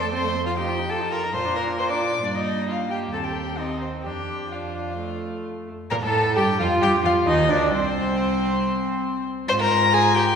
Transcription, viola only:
0, 0, Header, 1, 2, 480
1, 0, Start_track
1, 0, Key_signature, -2, "major"
1, 0, Tempo, 445104
1, 496, Time_signature, 4, 2, 24, 8
1, 3378, Tempo, 460829
1, 7218, Tempo, 445104
1, 11031, End_track
2, 0, Start_track
2, 0, Title_t, "Viola"
2, 0, Program_c, 0, 41
2, 24, Note_on_c, 0, 57, 54
2, 140, Note_on_c, 0, 60, 56
2, 156, Note_off_c, 0, 57, 0
2, 260, Note_on_c, 0, 57, 52
2, 276, Note_off_c, 0, 60, 0
2, 382, Note_on_c, 0, 60, 46
2, 398, Note_off_c, 0, 57, 0
2, 496, Note_off_c, 0, 60, 0
2, 503, Note_on_c, 0, 65, 49
2, 612, Note_on_c, 0, 63, 53
2, 628, Note_off_c, 0, 65, 0
2, 741, Note_on_c, 0, 65, 48
2, 757, Note_off_c, 0, 63, 0
2, 852, Note_on_c, 0, 63, 50
2, 868, Note_off_c, 0, 65, 0
2, 963, Note_off_c, 0, 63, 0
2, 970, Note_on_c, 0, 65, 60
2, 1088, Note_on_c, 0, 63, 52
2, 1105, Note_off_c, 0, 65, 0
2, 1208, Note_on_c, 0, 65, 55
2, 1225, Note_off_c, 0, 63, 0
2, 1330, Note_on_c, 0, 63, 49
2, 1346, Note_off_c, 0, 65, 0
2, 1444, Note_off_c, 0, 63, 0
2, 1450, Note_on_c, 0, 65, 60
2, 1569, Note_on_c, 0, 62, 47
2, 1585, Note_off_c, 0, 65, 0
2, 1679, Note_on_c, 0, 65, 51
2, 1695, Note_off_c, 0, 62, 0
2, 1806, Note_on_c, 0, 62, 45
2, 1822, Note_off_c, 0, 65, 0
2, 1914, Note_off_c, 0, 62, 0
2, 1921, Note_on_c, 0, 65, 51
2, 2046, Note_on_c, 0, 62, 50
2, 2062, Note_off_c, 0, 65, 0
2, 2166, Note_on_c, 0, 65, 47
2, 2182, Note_off_c, 0, 62, 0
2, 2288, Note_on_c, 0, 62, 47
2, 2304, Note_off_c, 0, 65, 0
2, 2412, Note_off_c, 0, 62, 0
2, 2416, Note_on_c, 0, 58, 56
2, 3379, Note_on_c, 0, 60, 50
2, 3395, Note_off_c, 0, 58, 0
2, 3846, Note_off_c, 0, 60, 0
2, 3852, Note_on_c, 0, 60, 47
2, 4344, Note_on_c, 0, 62, 38
2, 4360, Note_off_c, 0, 60, 0
2, 4828, Note_off_c, 0, 62, 0
2, 4834, Note_on_c, 0, 62, 46
2, 5302, Note_off_c, 0, 62, 0
2, 5308, Note_on_c, 0, 57, 46
2, 6048, Note_off_c, 0, 57, 0
2, 6270, Note_on_c, 0, 70, 87
2, 6319, Note_off_c, 0, 70, 0
2, 6397, Note_on_c, 0, 69, 95
2, 6739, Note_off_c, 0, 69, 0
2, 6745, Note_on_c, 0, 67, 93
2, 6829, Note_off_c, 0, 67, 0
2, 6986, Note_on_c, 0, 65, 88
2, 7224, Note_on_c, 0, 67, 100
2, 7240, Note_off_c, 0, 65, 0
2, 7462, Note_off_c, 0, 67, 0
2, 7468, Note_on_c, 0, 65, 81
2, 7707, Note_on_c, 0, 63, 78
2, 7723, Note_off_c, 0, 65, 0
2, 7940, Note_off_c, 0, 63, 0
2, 7946, Note_on_c, 0, 62, 80
2, 8179, Note_off_c, 0, 62, 0
2, 8189, Note_on_c, 0, 60, 85
2, 9829, Note_off_c, 0, 60, 0
2, 10104, Note_on_c, 0, 65, 77
2, 11031, Note_off_c, 0, 65, 0
2, 11031, End_track
0, 0, End_of_file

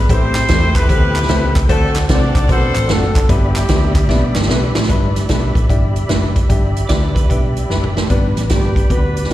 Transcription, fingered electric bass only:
0, 0, Header, 1, 2, 480
1, 0, Start_track
1, 0, Key_signature, 1, "major"
1, 0, Tempo, 400267
1, 118, Time_signature, 4, 2, 24, 8
1, 11193, End_track
2, 0, Start_track
2, 0, Title_t, "Fingered electric bass"
2, 0, Program_c, 0, 33
2, 113, Note_on_c, 0, 33, 100
2, 522, Note_off_c, 0, 33, 0
2, 590, Note_on_c, 0, 40, 99
2, 1000, Note_off_c, 0, 40, 0
2, 1066, Note_on_c, 0, 38, 91
2, 1478, Note_off_c, 0, 38, 0
2, 1558, Note_on_c, 0, 37, 106
2, 1965, Note_off_c, 0, 37, 0
2, 2030, Note_on_c, 0, 38, 119
2, 2439, Note_off_c, 0, 38, 0
2, 2513, Note_on_c, 0, 36, 102
2, 2921, Note_off_c, 0, 36, 0
2, 2987, Note_on_c, 0, 35, 113
2, 3253, Note_off_c, 0, 35, 0
2, 3298, Note_on_c, 0, 33, 87
2, 3444, Note_off_c, 0, 33, 0
2, 3472, Note_on_c, 0, 30, 88
2, 3880, Note_off_c, 0, 30, 0
2, 3945, Note_on_c, 0, 31, 105
2, 4356, Note_off_c, 0, 31, 0
2, 4429, Note_on_c, 0, 38, 102
2, 4901, Note_on_c, 0, 35, 102
2, 4919, Note_off_c, 0, 38, 0
2, 5169, Note_off_c, 0, 35, 0
2, 5227, Note_on_c, 0, 31, 89
2, 5369, Note_off_c, 0, 31, 0
2, 5401, Note_on_c, 0, 35, 109
2, 5661, Note_off_c, 0, 35, 0
2, 5708, Note_on_c, 0, 33, 79
2, 5849, Note_off_c, 0, 33, 0
2, 5866, Note_on_c, 0, 31, 93
2, 6276, Note_off_c, 0, 31, 0
2, 6354, Note_on_c, 0, 35, 96
2, 6617, Note_off_c, 0, 35, 0
2, 6658, Note_on_c, 0, 33, 84
2, 6804, Note_off_c, 0, 33, 0
2, 6829, Note_on_c, 0, 31, 89
2, 7239, Note_off_c, 0, 31, 0
2, 7307, Note_on_c, 0, 30, 89
2, 7718, Note_off_c, 0, 30, 0
2, 7792, Note_on_c, 0, 31, 90
2, 8201, Note_off_c, 0, 31, 0
2, 8271, Note_on_c, 0, 38, 87
2, 8681, Note_off_c, 0, 38, 0
2, 8751, Note_on_c, 0, 35, 103
2, 9161, Note_off_c, 0, 35, 0
2, 9227, Note_on_c, 0, 30, 90
2, 9640, Note_off_c, 0, 30, 0
2, 9715, Note_on_c, 0, 31, 84
2, 9980, Note_off_c, 0, 31, 0
2, 10018, Note_on_c, 0, 33, 87
2, 10166, Note_off_c, 0, 33, 0
2, 10198, Note_on_c, 0, 31, 93
2, 10606, Note_off_c, 0, 31, 0
2, 10674, Note_on_c, 0, 38, 90
2, 11085, Note_off_c, 0, 38, 0
2, 11153, Note_on_c, 0, 36, 85
2, 11193, Note_off_c, 0, 36, 0
2, 11193, End_track
0, 0, End_of_file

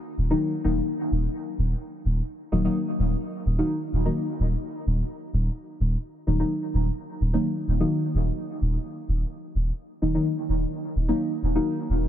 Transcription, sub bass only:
0, 0, Header, 1, 2, 480
1, 0, Start_track
1, 0, Key_signature, -6, "minor"
1, 0, Tempo, 468750
1, 1379, Time_signature, 4, 2, 24, 8
1, 12374, End_track
2, 0, Start_track
2, 0, Title_t, "Sub bass"
2, 0, Program_c, 0, 38
2, 179, Note_on_c, 0, 27, 86
2, 343, Note_off_c, 0, 27, 0
2, 659, Note_on_c, 0, 27, 86
2, 823, Note_off_c, 0, 27, 0
2, 1139, Note_on_c, 0, 27, 88
2, 1303, Note_off_c, 0, 27, 0
2, 1619, Note_on_c, 0, 27, 98
2, 1783, Note_off_c, 0, 27, 0
2, 2098, Note_on_c, 0, 27, 87
2, 2263, Note_off_c, 0, 27, 0
2, 2579, Note_on_c, 0, 27, 90
2, 2743, Note_off_c, 0, 27, 0
2, 3060, Note_on_c, 0, 27, 87
2, 3223, Note_off_c, 0, 27, 0
2, 3539, Note_on_c, 0, 27, 99
2, 3703, Note_off_c, 0, 27, 0
2, 4020, Note_on_c, 0, 27, 85
2, 4183, Note_off_c, 0, 27, 0
2, 4500, Note_on_c, 0, 27, 86
2, 4663, Note_off_c, 0, 27, 0
2, 4980, Note_on_c, 0, 27, 92
2, 5143, Note_off_c, 0, 27, 0
2, 5459, Note_on_c, 0, 27, 97
2, 5623, Note_off_c, 0, 27, 0
2, 5939, Note_on_c, 0, 27, 89
2, 6103, Note_off_c, 0, 27, 0
2, 6419, Note_on_c, 0, 27, 90
2, 6583, Note_off_c, 0, 27, 0
2, 6899, Note_on_c, 0, 27, 89
2, 7063, Note_off_c, 0, 27, 0
2, 7379, Note_on_c, 0, 27, 99
2, 7543, Note_off_c, 0, 27, 0
2, 7858, Note_on_c, 0, 27, 85
2, 8023, Note_off_c, 0, 27, 0
2, 8338, Note_on_c, 0, 27, 88
2, 8502, Note_off_c, 0, 27, 0
2, 8818, Note_on_c, 0, 27, 89
2, 8982, Note_off_c, 0, 27, 0
2, 9298, Note_on_c, 0, 27, 101
2, 9463, Note_off_c, 0, 27, 0
2, 9777, Note_on_c, 0, 27, 88
2, 9942, Note_off_c, 0, 27, 0
2, 10258, Note_on_c, 0, 27, 86
2, 10422, Note_off_c, 0, 27, 0
2, 10738, Note_on_c, 0, 27, 88
2, 10902, Note_off_c, 0, 27, 0
2, 11218, Note_on_c, 0, 27, 99
2, 11382, Note_off_c, 0, 27, 0
2, 11698, Note_on_c, 0, 27, 89
2, 11862, Note_off_c, 0, 27, 0
2, 12179, Note_on_c, 0, 27, 90
2, 12343, Note_off_c, 0, 27, 0
2, 12374, End_track
0, 0, End_of_file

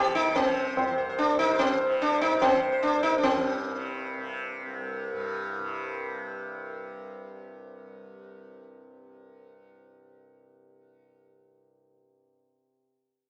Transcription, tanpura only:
0, 0, Header, 1, 2, 480
1, 0, Start_track
1, 0, Tempo, 409556
1, 416, Time_signature, 7, 2, 24, 8
1, 5691, Tempo, 400802
1, 15797, End_track
2, 0, Start_track
2, 0, Title_t, "Tanpura"
2, 0, Program_c, 0, 104
2, 0, Note_on_c, 0, 36, 62
2, 0, Note_on_c, 0, 43, 65
2, 0, Note_on_c, 0, 48, 72
2, 429, Note_off_c, 0, 48, 0
2, 429, Note_on_c, 0, 48, 72
2, 995, Note_off_c, 0, 36, 0
2, 999, Note_on_c, 0, 36, 72
2, 1553, Note_off_c, 0, 43, 0
2, 1557, Note_on_c, 0, 43, 75
2, 2109, Note_off_c, 0, 48, 0
2, 2109, Note_on_c, 0, 48, 67
2, 2686, Note_off_c, 0, 48, 0
2, 2686, Note_on_c, 0, 48, 66
2, 3252, Note_off_c, 0, 36, 0
2, 3257, Note_on_c, 0, 36, 68
2, 3794, Note_off_c, 0, 43, 0
2, 3798, Note_on_c, 0, 43, 60
2, 4350, Note_off_c, 0, 48, 0
2, 4350, Note_on_c, 0, 48, 61
2, 4893, Note_off_c, 0, 48, 0
2, 4893, Note_on_c, 0, 48, 70
2, 5456, Note_off_c, 0, 36, 0
2, 5461, Note_on_c, 0, 36, 67
2, 6010, Note_off_c, 0, 43, 0
2, 6015, Note_on_c, 0, 43, 67
2, 6575, Note_off_c, 0, 48, 0
2, 6575, Note_on_c, 0, 48, 68
2, 14019, Note_off_c, 0, 36, 0
2, 14578, Note_off_c, 0, 43, 0
2, 15138, Note_off_c, 0, 48, 0
2, 15797, End_track
0, 0, End_of_file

